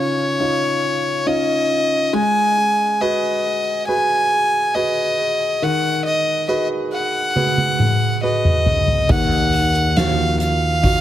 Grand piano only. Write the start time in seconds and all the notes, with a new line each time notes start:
Already playing: C#3 C#4 D#4 F4
0.40 C#4 D#4 F4
1.26 C#4 D#4 F4
2.13 G#3
3.01 F#4 G#4 B4
3.88 F#4 G#4 B4
4.75 F#4 G#4 B4
5.62 D#3
6.48 F#4 G#4 B4
7.36 F#4 G#4 B4
8.22 F#4 G#4 B4
9.09 D#3
9.96 D#4 F4 F#4
10.83 D#4 F4 F#4